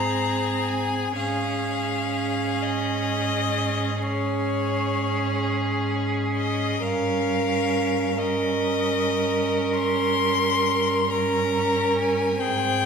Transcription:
Already playing: G#2 C4 G#4 A#5
0.69 G#5
1.17 G#2 C#4 G#4 F5
2.62 D#5
4.02 C#4 G#4 C#5
6.37 D#5
6.82 G2 C#4 A#4 F5
8.18 C#4 A#4 D#5
9.74 C6
11.10 C#4 A#4 A#5
11.98 G#5
12.40 G#2 C4 G#4 G5

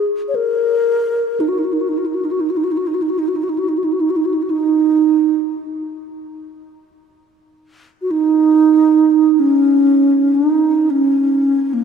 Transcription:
0.28 C#5
0.35 A#4
1.40 D#4
1.48 F#4
1.59 D#4
1.64 F#4
1.73 D#4
1.81 F#4
1.89 D#4
1.98 F#4
2.06 D#4
2.15 F#4
2.25 D#4
2.31 F#4
2.41 D#4
2.50 F#4
2.57 D#4
2.64 F#4
2.72 D#4
2.77 F#4
2.87 D#4
2.94 F#4
3.02 D#4
3.10 F#4
3.19 D#4
3.28 F#4
3.36 D#4
3.43 F#4
3.49 D#4
3.59 F#4
3.69 D#4
3.78 F#4
3.84 D#4
3.93 F#4
4.01 D#4
4.10 F#4
4.17 D#4
4.25 F#4
4.34 D#4
4.42 F#4
4.50 D#4
8.02 F#4
8.11 D#4
9.39 C#4
10.34 D#4
10.90 C#4
11.74 A#3

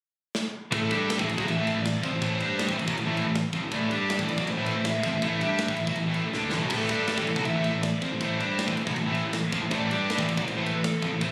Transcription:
0.35 snare
0.71 A1 A2 E3 A3 E4 A4, kick, ride
0.89 G2 G3 D4 G4, kick, ride
1.10 snare, ride
1.19 A1 A2 E3, kick
1.27 A1 A2 E3 G#4, ride
1.37 B1 B2 F#3, kick
1.47 A1 A2 E3 E5, ride
1.56 A1 A2 E3 A3
1.67 ride
1.75 A1 A2 E3
1.83 D5, snare, ride
2.02 F2 F3 C4 C5, kick, ride
2.11 A1 A2 E3
2.20 A1 A2 E3 A3, kick, ride
2.39 G2 G3 D4 G4, ride
2.59 snare, ride
2.68 A1 A2 E3, kick
2.77 A1 A2 E3, ride
2.86 B1 B2 F#3, kick
2.95 A1 A2 E3, ride
3.04 A1 A2 E3 A3
3.17 ride
3.25 A1 A2 E3
3.35 snare, ride
3.53 F2 F3 C4, kick, ride
3.63 A1 A2 E3
3.71 A1 A2 E3 A3 D5, kick, ride
3.90 G2 G3 D4 G4, ride
4.10 snare, ride
4.18 A1 A2 E3, kick
4.28 A1 A2 E3, ride
4.38 B1 B2 F#3, kick
4.47 A1 A2 E3 C5, ride
4.56 A1 A2 E3 A3
4.66 ride
4.75 A1 A2 E3
4.85 E5, snare, ride
5.03 F2 F3 C4, kick, ride
5.13 A1 A2 E3
5.22 A1 A2 E3 A3 E5, kick, ride
5.41 G2 G3 D4 G4, ride
5.58 snare, ride
5.68 A1 A2 E3, kick
5.77 A1 A2 E3, ride
5.87 B1 B2 F#3, kick
5.96 A1 A2 E3, ride
6.06 A1 A2 E3 A3
6.14 ride
6.25 A1 A2 E3
6.33 D2 D3 A3 D4, snare
6.52 A1 A2 E3, snare
6.63 B1 B2 F#3
6.70 A1 A2 E3 A3 A4, kick, ride, crash
6.89 G2 G3 D4 G4, kick, ride
7.07 snare, ride
7.18 A1 A2 E3, kick
7.27 A1 A2 E3, ride
7.36 B1 B2 F#3, kick
7.45 A1 A2 E3 E5, ride
7.54 A1 A2 E3 A3
7.64 ride
7.74 A1 A2 E3
7.83 D5, snare, ride
8.01 F2 F3 C4 C5, kick, ride
8.11 A1 A2 E3
8.20 A1 A2 E3 A3, kick, ride
8.38 G2 G3 D4 G4, ride
8.59 snare, ride
8.67 A1 A2 E3, kick
8.77 A1 A2 E3, ride
8.87 B1 B2 F#3, kick
8.96 A1 A2 E3, ride
9.06 A1 A2 E3 A3
9.15 ride
9.25 A1 A2 E3
9.33 snare, ride
9.52 F2 F3 C4, kick, ride
9.63 A1 A2 E3
9.71 A1 A2 E3 A3 D5, kick, ride
9.89 G2 G3 D4 G4, ride
10.10 snare, ride
10.18 A1 A2 E3, kick
10.28 A1 A2 E3, ride
10.37 B1 B2 F#3, kick
10.46 A1 A2 E3 C5, ride
10.55 A1 A2 E3 A3
10.65 B4, ride
10.75 A1 A2 E3
10.84 A4, snare, ride
11.02 F2 F3 C4, kick, ride
11.12 A1 A2 E3
11.21 A1 A2 E3 A3 C5, kick, ride

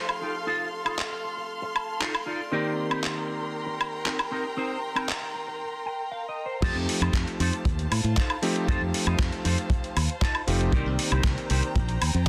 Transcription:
Already playing: F3 A3 C4 D#4 G4 A4 F5 C6 F6
0.09 high woodblock
0.21 D#4 F4 G4
0.47 D#4 F4 A4
0.85 D#4 F4 A4, high woodblock
0.99 clap
1.11 muted clean electric guitar stroke
1.24 muted clean electric guitar stroke
1.37 muted clean electric guitar stroke
1.62 muted clean electric guitar stroke
1.75 A5, muted clean electric guitar stroke, high woodblock
2.00 D#4 F4 A4 F5, clap
2.15 high woodblock
2.26 D#4 F4 A4 D5
2.51 D#3 A#3 C4 D#4 G4 A#4 D5 G5 A#5
2.90 C4 D#4 G4, high woodblock
3.04 clap
3.15 muted clean electric guitar stroke
3.28 muted clean electric guitar stroke
3.41 muted clean electric guitar stroke
3.66 muted clean electric guitar stroke
3.79 muted clean electric guitar stroke, high woodblock
4.05 C4 D#4 A#4, clap
4.19 high woodblock
4.31 C4 D#4 A#4
4.57 C4 D#4 C5
4.95 C4 D#4 A#4, high woodblock
5.09 clap
5.21 muted clean electric guitar stroke
5.34 muted clean electric guitar stroke
5.47 muted clean electric guitar stroke
5.86 G5
6.12 F5
6.29 D#5
6.46 C5
6.62 F2 F3 A3 C4 D#4 F4 G4 A4 C5 F5 A5, kick, closed hi-hat, crash
6.75 F2
6.88 muted clean electric guitar stroke, open hi-hat
7.01 F2 D#4 F4 A4 C5, closed hi-hat, high woodblock
7.13 F2, kick, clap, closed hi-hat
7.27 muted clean electric guitar stroke, closed hi-hat
7.39 F2 D#4 F4 A4 C5, open hi-hat
7.53 closed hi-hat
7.65 D#2, muted clean electric guitar stroke, kick, closed hi-hat
7.79 closed hi-hat
7.91 A2, open hi-hat, high woodblock
8.04 A2, closed hi-hat
8.16 D#4 F4 A4 C5, kick, clap, closed hi-hat
8.30 high woodblock
8.42 F3 A3 C4 D#4 G4, open hi-hat
8.55 muted clean electric guitar stroke, closed hi-hat
8.67 F2 D#4 F4 A4 C5, kick, closed hi-hat
8.81 F2
8.94 muted clean electric guitar stroke, open hi-hat
9.06 F2 D#4 F4 A4 D#5, closed hi-hat, high woodblock
9.19 F2, kick, clap, closed hi-hat
9.32 muted clean electric guitar stroke, closed hi-hat
9.44 F2 D#4 F4 A4 C5, open hi-hat
9.58 closed hi-hat
9.70 muted clean electric guitar stroke, kick, closed hi-hat
9.84 closed hi-hat
9.96 D#2, open hi-hat, high woodblock
10.10 closed hi-hat
10.21 D#4 F4 A4 D#5 A5, kick, clap, closed hi-hat
10.35 high woodblock
10.47 F1 F3 A3 C4 D#4 G4 F5, open hi-hat
10.60 muted clean electric guitar stroke, closed hi-hat
10.72 C2 D#3 C4 D#4 G4 A#4 C5 D5 G5 A#5, kick, closed hi-hat
10.86 C2
10.98 muted clean electric guitar stroke, open hi-hat
11.11 C2 D#4 G4 A#4 C5, high woodblock
11.24 C2, kick, clap, closed hi-hat
11.36 muted clean electric guitar stroke, closed hi-hat
11.50 C2 D#4 G4 A#4 C5, open hi-hat
11.63 closed hi-hat
11.76 A#1, muted clean electric guitar stroke, kick, closed hi-hat
11.89 closed hi-hat
12.02 D#2, open hi-hat, high woodblock
12.14 F2, closed hi-hat

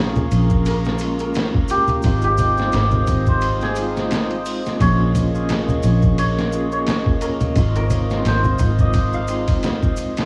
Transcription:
Already playing: A#1 A#3 C#4 F4 G#4 A#4 F5 A#5 C#6
0.16 low conga, maracas
0.31 A#1, ride, maracas
0.50 kick, maracas
0.65 A#4, ride, maracas
0.85 snare, maracas
0.98 A#3 C#4 F4, ride, maracas
1.03 G#3
1.19 A#4, ride, maracas
1.34 snare, ride, maracas
1.55 kick
1.68 G4, ride, maracas
1.88 ride, low conga, maracas
2.02 G#1 G#3 C4 D#4 F4 C5 D#5 D#6, kick, ride, maracas
2.22 G4, ride, maracas
2.37 ride, low conga, maracas
2.57 G#3 C4 D#4 F4, snare, maracas
2.72 G#1 A#4, snare, ride, maracas
2.91 low conga, maracas
3.07 G#1, kick, ride, maracas
3.26 C5, kick, maracas
3.41 ride, maracas
3.61 G#4, snare, maracas
3.75 G#3 C4 D#4 F4, ride, maracas
3.97 snare, maracas
4.11 snare, ride, maracas
4.31 ride
4.46 open hi-hat, maracas
4.66 snare, maracas
4.80 A#1 A#3 C#4 F4 G#4 A#4 C#5 C#6, kick, ride, maracas
5.15 ride, low conga, maracas
5.35 A#3 C#4 F4 G#4, maracas
5.49 snare, ride, maracas
5.69 low conga, maracas
5.83 A#1, ride, maracas
6.02 kick, maracas
6.18 C#5, ride, maracas
6.38 snare, maracas
6.52 A#3 C#4 F4 G#4, maracas
6.72 C#5, maracas
6.87 snare, ride, maracas
7.06 kick
7.21 A#4, ride, maracas
7.41 ride, low conga, maracas
7.56 G#1 G#3 C4 D#4 F4 C5 F5 D#6, kick, ride, maracas
7.76 A#4, ride, maracas
7.90 ride, low conga, maracas
8.10 G#3 C4 D#4 F4, snare, maracas
8.25 G#1 C5, snare, ride, maracas
8.44 low conga, maracas
8.59 G#1, kick, ride, maracas
8.79 D#5, kick, maracas
8.93 kick, ride, maracas
9.13 F5, maracas
9.28 G#3 C4 D#4 F4, ride, maracas
9.47 kick, ride, maracas
9.63 snare, ride, maracas
9.83 kick, maracas
9.97 ride, maracas
10.17 snare, ride, maracas

